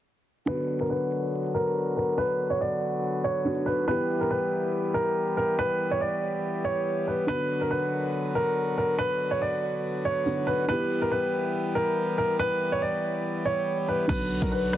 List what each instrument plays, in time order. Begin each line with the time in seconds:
0.46 felt piano D3 B3 F#4, harmonium D3 F#3 B3 F#4, grand piano B4
0.81 grand piano A#4
0.90 grand piano B4
1.54 grand piano A#4
1.97 grand piano A#4
2.18 grand piano B4
2.50 grand piano C#5
2.61 grand piano D5
3.24 grand piano C#5
3.44 felt piano D3 B3 F#4
3.66 grand piano B4
3.86 felt piano E3 B3 G4, harmonium E3 G3 G4, grand piano B4
4.21 grand piano A#4
4.31 grand piano B4
4.94 grand piano A#4
5.37 grand piano A#4
5.59 grand piano B4
5.91 grand piano C#5
6.01 grand piano D5
6.65 grand piano C#5
7.08 grand piano B4
7.27 felt piano D3 B3 F#4, harmonium D3 F#3 F#4, grand piano B4
7.61 grand piano A#4
7.71 grand piano B4
8.35 grand piano A#4
8.78 grand piano A#4
8.99 grand piano B4
9.31 grand piano C#5
9.42 grand piano D5
10.05 grand piano C#5
10.25 felt piano D3 B3 F#4
10.47 grand piano B4
10.67 felt piano E3 B3 G4, harmonium E3 G3 B3 G4, grand piano B4
11.02 grand piano A#4
11.12 grand piano B4
11.75 grand piano A#4
12.18 grand piano A#4
12.39 grand piano B4
12.72 grand piano C#5
12.82 grand piano D5
13.45 grand piano C#5
13.88 grand piano B4
14.07 808-style bass B1, felt piano D3 B3 F#4, harmonium D3 F#3 B3 F#4, grand piano B4, kick, closed hi-hat, crash
14.42 808-style bass B1, grand piano A#4, kick, closed hi-hat
14.52 grand piano B4, soft synth lead B4
14.73 soft synth lead D5, cross-stick, closed hi-hat